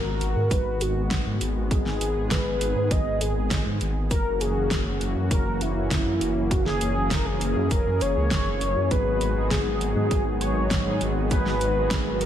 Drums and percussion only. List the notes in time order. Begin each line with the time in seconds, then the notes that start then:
0.21 closed hi-hat
0.51 kick, closed hi-hat
0.81 closed hi-hat
1.11 kick, snare, closed hi-hat
1.41 closed hi-hat
1.71 kick, closed hi-hat
1.86 snare
2.01 closed hi-hat
2.31 kick, snare, closed hi-hat
2.61 closed hi-hat
2.91 kick, closed hi-hat
3.21 closed hi-hat
3.51 kick, snare, closed hi-hat
3.81 closed hi-hat
4.11 kick, closed hi-hat
4.41 closed hi-hat
4.71 kick, snare, closed hi-hat
5.01 closed hi-hat
5.31 kick, closed hi-hat
5.61 closed hi-hat
5.91 kick, snare, closed hi-hat
6.21 closed hi-hat
6.51 kick, closed hi-hat
6.66 snare
6.81 closed hi-hat
7.11 kick, snare, closed hi-hat
7.41 closed hi-hat
7.71 kick, closed hi-hat
8.01 closed hi-hat
8.31 kick, snare, closed hi-hat
8.61 closed hi-hat
8.91 kick, closed hi-hat
9.21 closed hi-hat
9.51 kick, snare, closed hi-hat
9.81 closed hi-hat
10.11 kick, closed hi-hat
10.41 closed hi-hat
10.71 kick, snare, closed hi-hat
11.01 closed hi-hat
11.31 kick, closed hi-hat
11.46 snare
11.61 closed hi-hat
11.91 kick, snare, closed hi-hat
12.21 closed hi-hat